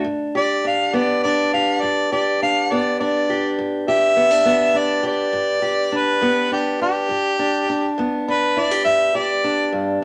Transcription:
Already playing: steel-string acoustic guitar D4
0.04 steel-string acoustic guitar G2
0.35 steel-string acoustic guitar G4, harmonica D5
0.65 steel-string acoustic guitar D4, harmonica F5
0.93 steel-string acoustic guitar G2 B3, harmonica D5
1.23 steel-string acoustic guitar D4, harmonica D5
1.53 steel-string acoustic guitar G4, harmonica F5
1.81 steel-string acoustic guitar G2, harmonica D5
2.12 steel-string acoustic guitar G4, harmonica D5
2.42 steel-string acoustic guitar D4, harmonica F5
2.71 steel-string acoustic guitar G2 B3, harmonica D5
2.99 steel-string acoustic guitar D4, harmonica D5
3.30 steel-string acoustic guitar G4
3.59 steel-string acoustic guitar G2
3.88 steel-string acoustic guitar G4, harmonica E5
4.17 steel-string acoustic guitar B3
4.31 steel-string acoustic guitar D4
4.44 steel-string acoustic guitar G2 B3
4.74 steel-string acoustic guitar D4, harmonica D5
5.03 steel-string acoustic guitar G4, harmonica D5
5.33 steel-string acoustic guitar G2
5.62 steel-string acoustic guitar G4
5.92 steel-string acoustic guitar D4
5.97 harmonica B4
6.21 steel-string acoustic guitar G2 B3
6.52 steel-string acoustic guitar D4, harmonica G4
6.81 steel-string acoustic guitar D4, harmonica G4
7.09 steel-string acoustic guitar G2
7.39 steel-string acoustic guitar D4
7.69 steel-string acoustic guitar D4
7.98 steel-string acoustic guitar G2 B3
8.28 steel-string acoustic guitar D4, harmonica B4
8.57 steel-string acoustic guitar E4, harmonica D5
8.71 steel-string acoustic guitar G4
8.85 steel-string acoustic guitar G2, harmonica E5
9.15 steel-string acoustic guitar G4, harmonica D5
9.44 steel-string acoustic guitar D4
9.72 steel-string acoustic guitar G2

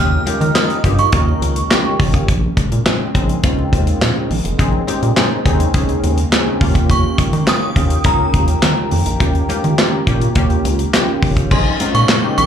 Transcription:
Already playing: analog synth bass D#2, analog synth pad C#3 D#3 D#4 G4, analog polysynth A#3 C#4 F4, synth bell F6
0.00 analog polysynth G4
0.11 muted conga
0.26 analog polysynth A#3 C#4 F4 G4, closed hi-hat, high conga
0.41 analog synth bass D#3, closed hi-hat
0.55 analog polysynth A#3 C#4 F4 A#4, synth bell D#6, snare, clap, closed hi-hat, high conga
0.70 closed hi-hat, muted conga
0.84 analog synth bass G2, analog polysynth A#3 C#4 F4 G4, kick, closed hi-hat, low conga
0.99 synth bell C#6, closed hi-hat
1.12 analog synth bass D#2, analog polysynth A#3 C#4 F4 A#4, kick, closed hi-hat, muted conga
1.28 muted conga
1.42 analog synth bass C#2, closed hi-hat, high conga
1.56 closed hi-hat
1.70 analog polysynth A#3 C#4 F4 G4, snare, clap, closed hi-hat, muted conga
1.85 muted conga, high conga
2.00 analog synth bass F1, kick, open hi-hat, low conga
2.14 kick, closed hi-hat
2.28 analog synth bass A#1, analog synth pad G#3 A#3, kick, closed hi-hat, muted conga, low conga
2.57 kick, closed hi-hat, high conga
2.72 analog synth bass A#2, closed hi-hat
2.85 analog polysynth C4 C#4 D#4 G#4, snare, clap, closed hi-hat, muted conga, high conga
3.14 analog synth bass A#1, analog polysynth C4 C#4 D#4 G#4, kick, closed hi-hat, low conga
3.29 closed hi-hat
3.43 analog synth bass C#2, analog polysynth C4 C#4 D#4 F4, kick, closed hi-hat
3.59 muted conga
3.73 analog synth bass D#2, kick, closed hi-hat, high conga
3.87 closed hi-hat
4.01 analog synth bass A#2, snare, clap, closed hi-hat, muted conga
4.16 muted conga, high conga
4.30 analog synth bass A#1, open hi-hat, low conga
4.45 analog synth bass F1, closed hi-hat
4.58 analog synth bass A#1, analog polysynth C4 C#4 D#4 G#4, kick, closed hi-hat, muted conga, low conga
4.73 muted conga
4.87 analog polysynth C4 C#4 D#4 G4, closed hi-hat, high conga
5.03 analog synth bass A#2, closed hi-hat
5.16 analog polysynth C4 C#4 D#4 G#4, snare, clap, closed hi-hat, muted conga, high conga
5.31 muted conga
5.45 analog synth bass D#2, analog polysynth C4 C#4 D#4 G#4, kick, closed hi-hat, low conga
5.60 closed hi-hat
5.74 analog synth bass C#2, analog polysynth C4 C#4 D#4 G#4, kick, closed hi-hat, muted conga
5.89 closed hi-hat, muted conga
6.04 analog synth bass D#2, closed hi-hat, high conga
6.18 closed hi-hat
6.31 analog polysynth C4 C#4 D#4 G#4, snare, clap, closed hi-hat, muted conga
6.47 muted conga, high conga
6.60 analog synth bass D#2, analog synth pad D#3 G4, analog polysynth A#3 C#4 F4 G4, kick, open hi-hat, low conga
6.75 kick, closed hi-hat
6.90 synth bell C#6, kick, closed hi-hat, muted conga, low conga
7.03 muted conga
7.18 kick, closed hi-hat, high conga
7.33 analog synth bass D#3, closed hi-hat
7.47 analog polysynth A#3 C#4 F4 G4, synth bell D#6, snare, clap, closed hi-hat, high conga
7.62 muted conga
7.76 analog synth bass D#2, analog polysynth A#3 C#4 F4 G4, kick, closed hi-hat, low conga
7.90 closed hi-hat
8.04 analog synth bass C#2, analog polysynth A#3 C#4 F4 A#4, synth bell A#5, kick, closed hi-hat
8.20 muted conga
8.34 analog synth bass D#2, kick, closed hi-hat, high conga
8.48 closed hi-hat
8.62 analog synth bass D#3, snare, clap, closed hi-hat, muted conga
8.77 muted conga, high conga
8.91 analog synth bass F2, open hi-hat, low conga
9.06 analog synth bass A#1, closed hi-hat
9.20 analog synth bass D#2, analog polysynth A#3 C#4 F4 G4, kick, closed hi-hat, muted conga, low conga
9.33 closed hi-hat, muted conga
9.49 analog polysynth A#3 C#4 F4 G4, closed hi-hat, high conga
9.64 analog synth bass D#3, closed hi-hat
9.78 analog polysynth A#3 C#4 F4 G4, snare, clap, closed hi-hat, muted conga, high conga
10.07 analog synth bass A#2, analog polysynth A#3 C#4 F4 G4, kick, closed hi-hat, low conga
10.21 closed hi-hat
10.35 analog synth bass D#2, analog polysynth A#3 C#4 F4 G4, kick, closed hi-hat, muted conga
10.50 closed hi-hat
10.65 analog synth bass C#2, closed hi-hat, high conga
10.79 closed hi-hat
10.93 analog polysynth A#3 C#4 F4 G4, snare, clap, closed hi-hat
11.08 muted conga, high conga
11.22 analog synth bass F1, kick, open hi-hat, low conga
11.37 kick, closed hi-hat
11.51 analog synth bass A#1, analog synth pad C#3 G#3 A#3, analog polysynth C4 C#4 D#4 G#4, synth bell C6, kick, crash, muted conga, low conga
11.65 muted conga
11.80 analog polysynth C4 C#4 D#4 F4, closed hi-hat, high conga
11.95 analog synth bass A#2, synth bell C#6, closed hi-hat
12.09 snare, clap, closed hi-hat, muted conga, high conga
12.24 analog polysynth C4 C#4 D#4 G4, muted conga
12.38 analog synth bass A#1, synth bell D#6, closed hi-hat, low conga

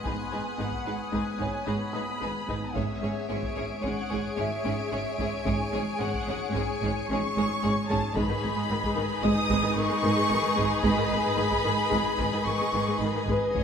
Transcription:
Already playing: ambient pad B3 G#5 D#6, violin section B5 C6 F#6
0.04 double bass section G#1, cello section G#2, viola section G#3 D#4, violin section G#4 B4 G#5, felt piano B5, taiko
0.32 double bass section G#1, cello section G#2 G#3, viola section G#3 D#4, violin section G#4 B4
0.58 double bass section G#1, cello section G#2, viola section G#3 D#4, violin section G#4 B4 F#5
0.73 taiko
0.77 violin section C#6
0.86 double bass section G#1, cello section G#2, viola section G#3 D#4, violin section G#4 B4
1.12 double bass section G#1, cello section G#2, viola section G#3 D#4, violin section G#4 B4 G#5, taiko
1.39 double bass section G#1, cello section G#2, viola section G#3 D#4, violin section G#4 B4, felt piano C#5, taiko
1.66 double bass section G#1, cello section G#2, viola section G#3 D#4, violin section G#4 B4 B5
1.93 double bass section G#1, cello section G#2, viola section G#3 D#4, violin section G#4 B4, felt piano D#6
2.21 double bass section G#1, cello section G#2, viola section G#3 D#4, violin section G#4 B4
2.47 double bass section G#1, cello section G#2, viola section G#3 D#4, violin section G#4 B4, taiko
2.74 double bass section G#1, cello section G#2, viola section G#3 C#4, violin section G#4 C#5 E5, ambient pad G#4 C#5 G#5, taiko
3.02 double bass section G#1, cello section G#2 G#3, viola section G#3 C#4, violin section G#4 C#5
3.29 double bass section G#1, cello section G#2, viola section G#3 C#4, violin section G#4 C#5 D7
3.43 taiko
3.56 double bass section G#1, cello section G#2, viola section G#3 C#4, violin section G#4 C#5
3.82 double bass section G#1, cello section G#2, viola section G#3 C#4, violin section G#4 C#5 F#5, taiko
4.09 double bass section G#1, cello section G#2, viola section G#3 C#4, violin section G#4 C#5, taiko
4.37 double bass section G#1, cello section G#2, viola section G#3 C#4, violin section G#4 C#5 E5, felt piano E5
4.64 double bass section G#1, cello section G#2, viola section G#3 C#4, violin section G#4 C#5
4.91 double bass section G#1, cello section G#2, viola section G#3 C#4, violin section G#4 C#5
5.19 double bass section G#1, cello section G#2, viola section G#3 C#4, violin section G#4 C#5, taiko
5.45 double bass section G#1, cello section G#2, viola section G#3 C#4, violin section G#4 C#5 G#5, taiko
5.72 double bass section G#1, cello section G#2 G#3, viola section G#3 C#4, violin section G#4 C#5
5.98 double bass section G#1, cello section G#2, viola section G#3 C#4, violin section G#4 C#5 F#5
6.14 taiko
6.27 double bass section G#1, cello section G#2, viola section G#3 C#4, violin section G#4 C#5
6.53 double bass section G#1, cello section G#2, viola section G#3 C#4, violin section G#4 C#5 G#5, taiko
6.72 violin section C#7
6.82 double bass section G#1, cello section G#2, viola section G#3 C#4, violin section G#4 C#5, taiko
7.09 double bass section G#1, cello section G#2, viola section G#3 C#4, violin section G#4 C#5 C#6
7.36 double bass section G#1, cello section G#2, viola section G#3 C#4, violin section G#4 C#5
7.63 double bass section G#1, cello section G#2, viola section G#3 C#4, violin section G#4 C#5
7.89 double bass section G#1, cello section G#2, viola section G#3 C#4, violin section G#4 C#5 A5, taiko
8.15 double bass section G#1, cello section G#2, viola section G#3 D#4, ambient pad G#4 D#5 G#5, violin section G#4 B4 B5, taiko
8.29 cello section G#2, viola section D#3
8.43 double bass section G#1, cello section G#2 G#3, viola section D#3
8.56 cello section G#2, viola section G#3
8.70 double bass section G#1, cello section G#2, viola section D#3
8.83 cello section G#2, viola section G#3, taiko
8.96 double bass section G#1, cello section G#2, viola section D#3
9.23 double bass section G#1, cello section G#2, viola section G#3, felt piano D#5, violin section D#6, taiko
9.49 double bass section G#1, cello section G#2, viola section G#3, taiko
9.63 cello section G#2, viola section D#3
9.75 double bass section G#1, cello section G#2, viola section D#3, violin section C#6
9.89 cello section G#2, viola section G#3
10.02 double bass section G#1, cello section G#2, viola section D#3
10.16 cello section G#2, viola section G#3
10.29 double bass section G#1, cello section G#2, viola section D#3
10.42 cello section G#2, viola section D#3
10.55 double bass section G#1, cello section G#2, viola section G#3, taiko
10.82 double bass section G#1, cello section G#2, viola section G#3, violin section B5, taiko
10.96 cello section G#2, viola section D#3
11.10 double bass section G#1, cello section G#2 G#3, viola section D#3
11.21 viola section G#3
11.26 cello section G#2
11.36 double bass section G#1, cello section G#2, viola section D#3
11.50 cello section G#2, viola section G#3, taiko
11.64 double bass section G#1, cello section G#2, viola section D#3
11.90 double bass section G#1, cello section G#2, viola section G#3, taiko
12.18 double bass section G#1, cello section G#2, viola section G#3, taiko
12.31 cello section G#2, viola section D#3
12.45 double bass section G#1, cello section G#2, viola section D#3, violin section C#6
12.59 cello section G#2, viola section G#3
12.72 double bass section G#1, cello section G#2, viola section D#3
12.86 cello section G#2, viola section G#3
13.00 double bass section G#1, cello section G#2, viola section D#3, violin section B5
13.14 cello section G#2, viola section D#3
13.27 double bass section G#1, cello section G#2, viola section G#3, felt piano B4, taiko
13.52 double bass section G#1, cello section G#2, viola section G#3 C#4, ambient pad G#4 C#5, violin section G#4 C#5 D#5 G#6, taiko

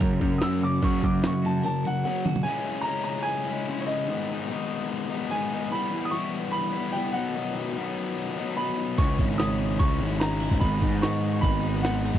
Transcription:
Already playing: clean electric guitar F#3 C#4 F#4
0.00 distorted electric guitar F#2 C#3, picked electric bass F#2, clean electric guitar A#4, kick, open hi-hat
0.21 picked electric bass F#2, distorted electric guitar F#2 C#3, clean electric guitar F#4, kick
0.38 distorted electric guitar F#2 C#3 F#3, upright piano D#6 E6, snare, open hi-hat
0.62 distorted electric guitar F#2 C#3, clean electric guitar F#4, upright piano D6
0.82 distorted electric guitar F#2 C#3 F#3, picked electric bass F#2, clean electric guitar F#3, upright piano C#6, kick, open hi-hat
1.02 distorted electric guitar F#2 C#3, clean electric guitar C#4, upright piano D6, kick
1.22 distorted electric guitar F#2 C#3, clean electric guitar F#3, snare, open hi-hat
1.27 upright piano C#6
1.42 distorted electric guitar F#2 C#3, clean electric guitar F#4, upright piano A5
1.63 distorted electric guitar F#2 C#3, clean electric guitar A#4, upright piano A5
1.84 distorted electric guitar F#2 C#3, clean electric guitar F#4, upright piano F#5
2.04 distorted electric guitar F#2 C#3 F#3, clean electric guitar F#3, upright piano F#5, high tom
2.26 distorted electric guitar F#2 C#3, clean electric guitar F#4, mid tom
2.36 floor tom
2.43 distorted electric guitar C#3 G#3, upright piano G#5
2.47 distorted electric guitar C#4 E4
2.65 distorted electric guitar G#3 C#4 E4
2.81 upright piano A#5
2.86 distorted electric guitar C#3 G#3 C#4 E4
3.04 upright piano A#5
3.23 upright piano G#5
3.47 distorted electric guitar G#3 C#4 E4
3.68 distorted electric guitar C#3 G#3 C#4 E4
3.81 upright piano C#5
3.87 distorted electric guitar C#4 E4, upright piano D#5
3.91 distorted electric guitar G#3
4.08 distorted electric guitar G#2 D#3 G#3 B3 D#4
4.28 distorted electric guitar G#3 B3 D#4
4.48 distorted electric guitar D#3 G#3 B3 D#4
5.10 distorted electric guitar G#3 B3 D#4
5.30 distorted electric guitar G#2 D#3 G#3 B3 D#4, upright piano G#5
5.51 distorted electric guitar G#3 B3 D#4
5.72 distorted electric guitar E3 G3 B3 E4, upright piano B5
5.91 distorted electric guitar G3 B3 E4
6.05 upright piano D#6
6.11 distorted electric guitar E3 G3 B3, upright piano C#6
6.15 distorted electric guitar E4
6.52 upright piano B5
6.73 distorted electric guitar G3 B3 E4
6.92 distorted electric guitar E3 G3, upright piano G5
6.97 distorted electric guitar B3 E4
7.13 distorted electric guitar F#3 B3 D#4, upright piano F#5
7.17 distorted electric guitar B2 D#3
7.34 distorted electric guitar B2 D#3 F#3 B3 D#4
7.54 distorted electric guitar F#3 B3 D#4
7.74 distorted electric guitar D#3 F#3 B3 D#4
8.36 distorted electric guitar F#3 B3 D#4
8.56 distorted electric guitar B2 D#3 F#3 B3 D#4, upright piano B5
8.77 distorted electric guitar F#3 B3 D#4
8.97 picked electric bass C#2, distorted electric guitar C#3 G#3 C#4 E4, clean electric guitar C#3, upright piano C#6, kick, crash
9.17 picked electric bass G#1, clean electric guitar G#3, distorted electric guitar G#3 C#4 E4, kick
9.37 distorted electric guitar C#3 G#3 C#4 E4, clean electric guitar G#3, upright piano D#6, snare, crash
9.59 clean electric guitar C#4
9.79 picked electric bass C#2, upright piano C#6, kick, crash
9.98 picked electric bass G#1, distorted electric guitar G#3 C#4 E4, clean electric guitar C#4
10.18 distorted electric guitar C#3 G#3 C#4 E4, upright piano A#5, snare, crash
10.39 distorted electric guitar G#3 C#4 E4, clean electric guitar E4
10.51 picked electric bass G#1, kick
10.59 picked electric bass G#1, distorted electric guitar G#2 D#3 G#3 B3 D#4, clean electric guitar G#2, upright piano B5, kick, crash
10.80 picked electric bass G#2, clean electric guitar D#3, distorted electric guitar G#3 B3 D#4, kick
11.00 distorted electric guitar D#3 G#3 B3 D#4, clean electric guitar G#3, upright piano C#6, snare, crash
11.23 clean electric guitar B3
11.33 upright piano C#6
11.41 picked electric bass G#1, clean electric guitar D#4, upright piano B5, kick, crash
11.61 distorted electric guitar G#3 B3 D#4, clean electric guitar B3
11.75 snare
11.83 distorted electric guitar G#2 D#3 G#3 B3 D#4, clean electric guitar D#4, upright piano F#5, snare, crash
12.04 distorted electric guitar G#3 B3 D#4, clean electric guitar G#4
12.15 picked electric bass F#1, kick

